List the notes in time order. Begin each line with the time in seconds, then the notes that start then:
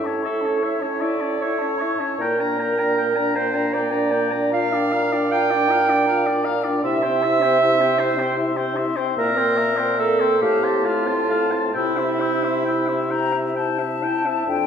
Already playing: A2
0.04 C#4 C#5 A5
0.23 E4 A4 E5 C#6
0.41 C#4 A5
0.45 C#5
0.61 E4 C#5 E5 C#6
0.80 C#4 C#5 A5
1.00 E4 D5 E5 C#6
1.20 C#4 C#5 A5
1.39 E4 C#5 E5 C#6
1.59 C#4 C#5 A5
1.79 E4 E5 C#6
1.98 C#4 C#5 A5
2.19 A#2 A#3 A#4 G5 A#5
2.39 D4 G5 A#5
2.59 A#3 G5 A#5
2.78 D4 G5 A#5
2.96 A#3 G5 A#5
3.15 D4 G5 A#5
3.34 A#3 C5 G5 A#5
3.53 D4 G5 A#5
3.72 A#3 D5 G5 A#5
3.90 D4 G5 A#5
4.11 A#3 G5 A#5
4.31 D4 G5 A#5
4.52 F4 F5 A#5
4.73 D4 D5 G5
4.92 F4 F5 A#5
5.12 D4 D5 G5
5.31 F4 F5 G5 A#5
5.50 D4 D5 G5
5.68 F4 F5 A#5
5.87 D4 D5 G5
6.06 F4 F5 A#5
6.25 D4 D5 G5
6.43 F4 F5 A#5
6.62 D4 D5 G5
6.83 C3 E4 E5 C6
7.03 C4 C5 G5
7.22 E4 E5 C6
7.42 C4 C5 G5
7.61 E4 E5 C6
7.80 C4 C5 G5
7.99 E4 C5 E5 C6
8.18 C4 C5 G5
8.37 E4 E5 C6
8.56 C4 C5 G5
8.76 E4 E5 C6
8.96 C4 C5 G5
9.17 A#2 A#3 A#4 E5 A#5
9.37 C4 C5 G5
9.57 A#3 E5 A#5
9.77 C4 C5 G5
9.98 A#3 A4 E5 A#5
10.20 C4 C5 G5
10.40 A2 A3 G4 F5 A5
10.62 C4 A5 C6
10.83 A3 F4 F5 A5
11.06 C4 A5 C6
11.28 A3 F5 A5
11.51 C4 A5 C6
11.67 F4
11.74 C3 E4 G5 E6
11.97 C4 E5 C6
12.20 E4 G5 E6
12.43 C4 E5 C6
12.65 E4 G5 E6
12.86 C4 E5 C6
13.10 E4 G5 A#5
13.32 C4 E5
13.56 E4 G5 A5
13.79 C4 E5
14.03 E4 G5
14.25 C4 E5
14.47 F2 D4 F4 G5